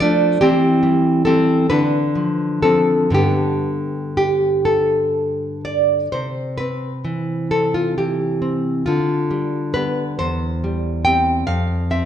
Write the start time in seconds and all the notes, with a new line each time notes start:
Already playing: F3
0.00 A3 D4 F4 D5
0.41 E3 C4 G4
0.83 G3
1.25 G3 C4 A4
1.70 D3 D4 B4
2.15 F3
2.62 F3 C4 A4
3.10 G2 D3
3.14 B3 G4
4.17 G4
4.65 A4
5.65 D5
6.12 C3 C5
6.58 C4 B4
7.05 E3
7.51 C4 A4
7.74 F4
7.98 E3 G4
8.42 C4
8.86 D3 F4
9.31 G3
9.74 G3 B3 B4
10.19 E2 C5
10.64 G3
11.05 G3 C4 G5
11.47 F2 F5
11.91 C4 E5